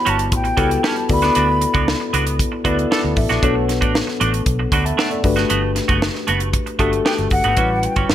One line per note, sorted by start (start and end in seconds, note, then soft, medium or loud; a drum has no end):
0.00 0.26 B3 medium
0.00 0.26 E4 medium
0.00 0.26 F#4 medium
0.00 0.26 G4 medium
0.00 0.30 C#5 medium
0.00 0.11 B5 medium
0.05 0.32 G1 medium
0.05 0.27 G3 medium
0.05 0.18 C#4 medium
0.05 0.17 F#4 loud
0.05 closed hi-hat medium
0.10 0.34 A5 medium
0.18 muted clean electric guitar stroke soft
0.18 closed hi-hat medium
0.32 0.51 A1 medium
0.32 0.88 G5 medium
0.32 kick medium
0.32 closed hi-hat medium
0.44 muted clean electric guitar stroke soft
0.44 closed hi-hat soft
0.57 0.77 C#2 medium
0.57 0.78 G3 medium
0.57 1.08 B3 medium
0.57 0.70 C#4 medium
0.57 1.08 E4 medium
0.57 1.09 F#4 medium
0.57 0.69 F#4 medium
0.57 1.10 G4 medium
0.57 1.09 A4 medium
0.57 kick medium
0.57 closed hi-hat medium
0.70 muted clean electric guitar stroke soft
0.70 closed hi-hat soft
0.83 1.04 G3 medium
0.83 0.96 C#4 medium
0.83 0.96 G4 medium
0.83 1.11 A5 medium
0.83 snare loud
0.96 muted clean electric guitar stroke medium
0.96 closed hi-hat soft
1.09 1.29 D2 medium
1.09 2.07 B3 medium
1.09 2.07 E4 medium
1.09 2.08 F#4 medium
1.09 2.08 A4 medium
1.09 2.08 D5 medium
1.09 2.11 B5 medium
1.09 muted clean electric guitar stroke soft
1.09 kick medium
1.09 open hi-hat medium
1.22 1.34 B3 soft
1.22 1.35 D4 soft
1.22 1.35 F#4 medium
1.22 snare soft
1.22 closed hi-hat soft
1.35 1.65 D2 medium
1.35 1.56 B3 medium
1.35 1.48 D4 medium
1.35 1.47 F#4 medium
1.35 closed hi-hat medium
1.49 muted clean electric guitar stroke soft
1.61 muted clean electric guitar stroke soft
1.61 closed hi-hat medium
1.74 1.94 C#2 medium
1.74 1.92 B3 soft
1.74 1.91 D4 medium
1.74 1.91 F#4 medium
1.74 kick medium
1.74 closed hi-hat soft
1.88 snare loud
2.00 muted clean electric guitar stroke soft
2.13 2.42 C#2 medium
2.13 2.34 B3 medium
2.13 2.26 D4 medium
2.13 2.25 F#4 medium
2.13 closed hi-hat medium
2.26 muted clean electric guitar stroke soft
2.26 closed hi-hat medium
2.39 kick medium
2.39 closed hi-hat medium
2.52 muted clean electric guitar stroke soft
2.64 2.84 D2 medium
2.64 3.38 B3 medium
2.64 2.86 B3 medium
2.64 2.78 D4 medium
2.64 3.38 E4 medium
2.64 3.38 F#4 medium
2.64 2.77 F#4 medium
2.64 3.39 A4 medium
2.64 3.39 D5 loud
2.64 kick medium
2.64 closed hi-hat medium
2.78 muted clean electric guitar stroke soft
2.78 closed hi-hat soft
2.91 3.12 B3 medium
2.91 3.03 D4 medium
2.91 3.03 A4 medium
2.91 3.15 A5 medium
2.91 snare loud
3.03 3.14 D2 medium
3.03 muted clean electric guitar stroke medium
3.16 3.27 A1 medium
3.16 3.41 E5 medium
3.16 muted clean electric guitar stroke soft
3.16 kick medium
3.16 open hi-hat medium
3.29 3.40 A#1 medium
3.29 3.42 B3 soft
3.29 3.42 D4 medium
3.29 3.42 F#4 medium
3.29 snare soft
3.29 closed hi-hat soft
3.42 3.82 B1 loud
3.42 3.63 A3 medium
3.42 4.41 B3 medium
3.42 4.40 D4 medium
3.42 3.55 D4 medium
3.42 4.41 F#4 medium
3.42 3.54 F#4 medium
3.42 4.41 A4 medium
3.42 4.41 C#5 medium
3.42 kick medium
3.42 closed hi-hat medium
3.55 muted clean electric guitar stroke soft
3.68 muted clean electric guitar stroke soft
3.68 snare soft
3.68 closed hi-hat medium
3.81 4.01 A1 medium
3.81 3.99 A3 soft
3.81 3.98 D4 soft
3.81 3.98 F#4 medium
3.81 kick medium
3.81 closed hi-hat soft
3.95 snare loud
4.07 muted clean electric guitar stroke soft
4.07 snare soft
4.20 4.40 A1 medium
4.20 4.41 A3 medium
4.20 4.33 D4 medium
4.20 4.32 F#4 medium
4.20 closed hi-hat medium
4.33 muted clean electric guitar stroke soft
4.33 closed hi-hat medium
4.46 4.65 B1 loud
4.46 kick medium
4.46 closed hi-hat medium
4.59 muted clean electric guitar stroke medium
4.72 4.91 D2 medium
4.72 4.93 A3 medium
4.72 4.85 D4 medium
4.72 4.84 F#4 medium
4.72 4.85 F#5 medium
4.72 4.85 B5 medium
4.72 kick medium
4.72 closed hi-hat medium
4.85 4.98 E5 medium
4.85 4.98 A5 medium
4.85 muted clean electric guitar stroke soft
4.85 closed hi-hat soft
4.97 5.19 A3 medium
4.97 5.11 D4 medium
4.97 5.10 A4 medium
4.97 5.11 C#5 medium
4.97 5.11 F#5 medium
4.97 snare loud
5.11 5.36 A4 soft
5.11 5.36 D5 medium
5.11 muted clean electric guitar stroke soft
5.11 closed hi-hat soft
5.24 5.43 G1 loud
5.24 6.22 A3 medium
5.24 6.22 D4 medium
5.24 6.22 F#4 medium
5.24 6.22 G4 medium
5.24 6.22 B4 medium
5.24 muted clean electric guitar stroke soft
5.24 kick medium
5.24 open hi-hat medium
5.36 5.48 A3 soft
5.36 5.48 B3 medium
5.36 5.49 F#4 medium
5.36 snare soft
5.36 closed hi-hat soft
5.49 5.79 G1 medium
5.49 5.70 A3 medium
5.49 5.62 B3 medium
5.49 5.61 F#4 medium
5.49 closed hi-hat medium
5.62 muted clean electric guitar stroke soft
5.75 muted clean electric guitar stroke soft
5.75 snare soft
5.75 closed hi-hat medium
5.88 6.08 F#1 medium
5.88 6.06 A3 medium
5.88 6.06 B3 medium
5.88 6.05 F#4 medium
5.88 kick medium
5.88 closed hi-hat soft
6.02 snare loud
6.14 muted clean electric guitar stroke soft
6.14 snare soft
6.27 6.57 F#1 medium
6.27 6.48 A3 medium
6.27 6.40 B3 medium
6.27 6.39 F#4 medium
6.27 closed hi-hat medium
6.40 muted clean electric guitar stroke soft
6.40 closed hi-hat medium
6.53 muted clean electric guitar stroke soft
6.53 kick medium
6.53 closed hi-hat medium
6.66 muted clean electric guitar stroke soft
6.66 closed hi-hat soft
6.79 6.98 G1 medium
6.79 7.53 A3 medium
6.79 7.00 A3 medium
6.79 6.92 B3 medium
6.79 7.53 D4 medium
6.79 7.53 F#4 medium
6.79 6.91 F#4 medium
6.79 7.53 G4 medium
6.79 7.53 A4 loud
6.79 kick medium
6.79 closed hi-hat medium
6.92 muted clean electric guitar stroke soft
6.92 closed hi-hat soft
7.05 7.26 A3 medium
7.05 7.18 B3 medium
7.05 7.18 G4 medium
7.05 7.13 G5 medium
7.05 snare loud
7.18 7.28 G1 medium
7.18 muted clean electric guitar stroke soft
7.18 closed hi-hat soft
7.30 7.41 G1 medium
7.30 7.87 F#5 medium
7.30 muted clean electric guitar stroke soft
7.30 kick medium
7.30 open hi-hat medium
7.44 7.54 G#1 medium
7.44 7.57 A3 soft
7.44 7.57 B3 medium
7.44 7.57 F#4 medium
7.44 closed hi-hat soft
7.56 7.86 A1 medium
7.56 8.15 G3 medium
7.56 7.78 G3 medium
7.56 8.15 C#4 medium
7.56 7.70 C#4 medium
7.56 8.15 E4 medium
7.56 8.15 F#4 medium
7.56 7.69 F#4 medium
7.56 8.15 B4 medium
7.56 kick loud
7.56 closed hi-hat medium
7.70 muted clean electric guitar stroke soft
7.83 8.10 G5 medium
7.83 muted clean electric guitar stroke soft
7.83 closed hi-hat medium
7.96 8.06 G1 medium
7.96 8.14 G3 soft
7.96 8.13 C#4 medium
7.96 8.13 F#4 medium
7.96 kick medium
7.96 closed hi-hat soft
8.09 8.15 G1 medium
8.09 8.15 B5 medium
8.09 snare loud